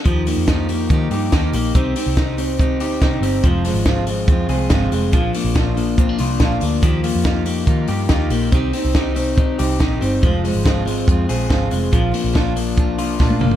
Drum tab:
HH |x-o-x-o-x-o-x-o-|x-o-x-o-x-o-x-o-|x-o-x-o-x-o-x-o-|x-o-x-o-x-o-x-o-|
SD |----o-------o---|----o-------o---|----o-------o---|----o-------o---|
T1 |----------------|----------------|----------------|----------------|
T2 |----------------|----------------|----------------|----------------|
FT |----------------|----------------|----------------|----------------|
BD |o---o---o---o---|o---o---o---o---|o---o---o---o---|o---o---o---o---|

HH |x-o-x-o-x-o-x-o-|x-o-x-o-x-o-x-o-|x-o-x-o-x-o-x-o-|x-o-x-o-x-o-----|
SD |----o-------o---|----o-------o---|----o-------o---|----o-------o---|
T1 |----------------|----------------|----------------|-------------o--|
T2 |----------------|----------------|----------------|--------------o-|
FT |----------------|----------------|----------------|---------------o|
BD |o---o---o---o---|o---o---o---o---|o---o---o---o---|o---o---o---o---|